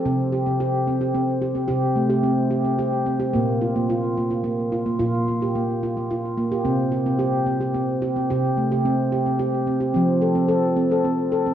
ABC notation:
X:1
M:3/4
L:1/16
Q:1/4=109
K:Bb
V:1 name="Handpan"
C2 G C G2 C G C2 G C | G2 A, G C2 G C G2 C G | B,2 F B, F2 B, F B,2 F B, | F2 B, G B,2 F B, F2 B, G |
C2 G C G2 C G C2 G C | G2 A, G C2 G C G2 C G | C2 A C A2 C A C2 A C |]
V:2 name="Handpan" clef=bass
C,8 z4 | C,8 z4 | B,,8 z4 | B,,8 z4 |
C,8 z4 | C,8 z4 | F,8 z4 |]